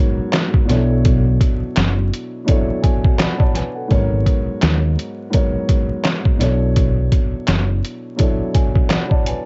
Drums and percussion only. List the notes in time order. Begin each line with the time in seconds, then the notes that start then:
0.33 snare, clap, closed hi-hat
0.54 kick
0.69 snare, closed hi-hat
1.05 kick, closed hi-hat
1.41 kick, closed hi-hat
1.76 snare, clap, closed hi-hat
2.14 closed hi-hat
2.48 kick, closed hi-hat
2.83 kick, closed hi-hat
3.04 kick
3.19 snare, clap, closed hi-hat
3.40 kick
3.55 snare, closed hi-hat
3.90 kick, closed hi-hat
4.26 kick, closed hi-hat
4.62 snare, clap, closed hi-hat
4.99 closed hi-hat
5.33 kick, closed hi-hat
5.69 kick, closed hi-hat
6.04 snare, clap, closed hi-hat
6.25 kick
6.40 snare, closed hi-hat
6.76 kick, closed hi-hat
7.12 kick, closed hi-hat
7.48 snare, clap, closed hi-hat
7.85 closed hi-hat
8.19 kick, closed hi-hat
8.55 kick, closed hi-hat
8.76 kick
8.90 snare, clap, closed hi-hat
9.11 kick
9.26 closed hi-hat